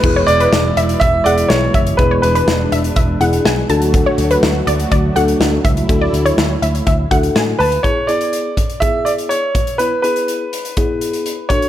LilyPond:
<<
  \new Staff \with { instrumentName = "Synth pluck" } { \time 4/4 \key e \mixolydian \tempo 4 = 123 r16 cis''16 r16 b'8 r16 e''16 r16 e''8 fis''16 r8. e''16 r16 | r16 cis''16 r16 b'8 r16 e''16 r16 e''8 fis''16 r16 gis''16 r16 a''16 r16 | r16 cis''16 r16 b'8 r16 d''16 r16 d''8 fis''16 r8. e''16 r16 | r16 d''16 r16 cis''8 r16 e''16 r16 e''8 fis''16 r16 gis''16 r16 a''16 r16 |
r1 | r1 | }
  \new Staff \with { instrumentName = "Grand piano" } { \time 4/4 \key e \mixolydian b'8 d''4. e''8 d''8 cis''4 | b'8 b'2. r8 | r1 | r2. r8 b'8 |
cis''8 d''4. e''8 d''8 cis''4 | b'8 b'2. cis''8 | }
  \new Staff \with { instrumentName = "Synth keys" } { \time 4/4 \key e \mixolydian <b e' gis'>4 r4. <b e' gis'>4 r8 | <b e' gis'>4 r4. <b e' gis'>4 <d' fis' a'>8~ | <d' fis' a'>4 r4. <d' fis' a'>4 r8 | <d' fis' a'>4 r4. <d' fis' a'>4 r8 |
<b e' gis'>8 <b e' gis'>4 r8 <b e' gis'>4 r4 | <b e' b'>8 <b e' gis'>4 r8 <b e' gis'>4 r8 <d' fis' a'>8 | }
  \new Staff \with { instrumentName = "Analog synth pad" } { \clef bass \time 4/4 \key e \mixolydian << { e'1 | d'2.~ d'8 fis'8~ | fis'2.~ fis'8 e'8~ | e'1 |
r1 | r1 | } \\ { <b, e gis>1~ | <b, e gis>2.~ <b, e gis>8 <d fis a>8~ | <d fis a>1~ | <d fis a>1 |
r1 | r1 | } >> }
  \new Staff \with { instrumentName = "Picked electric bass" } { \clef bass \time 4/4 \key e \mixolydian e,,8 e,,8 e,,8 e,,8 e,,8 e,,8 b,,8 fis,,8 | e,,8 e,,8 e,,8 e,,8 e,,8 e,,8 b,,8 d,8~ | d,8 d,8 d,8 d,8 d,8 d,8 d,8 cis,8 | d,8 d,8 d,8 d,8 d,8 d,8 a,8 d,8 |
r1 | r1 | }
  \new DrumStaff \with { instrumentName = "Drums" } \drummode { \time 4/4 <cymc bd>8 hh16 hh16 sn8 hh16 hh16 <hh bd>8 hh16 hh16 sn8 <hh bd>16 hh16 | <hh bd>8 hh16 hh16 sn8 hh16 hh16 <hh bd>8 hh16 hh16 sn8 hh16 hh16 | <hh bd>8 hh16 hh16 sn8 hh16 hh16 <hh bd>8 hh16 hh16 sn8 <hh bd>16 hh16 | <hh bd>8 hh16 hh16 sn8 hh16 hh16 <hh bd>8 <hh bd>16 hh16 sn8 hho16 hh16 |
<hh bd>8 hh16 hh16 hh8 <hh bd>16 hh16 <hh bd>8 hh16 hh16 hh8 <hh bd>16 hh16 | hh8 hh16 hh16 hh8 hh16 hh16 <hh bd>8 hh16 hh16 hh8 <hh bd>16 hh16 | }
>>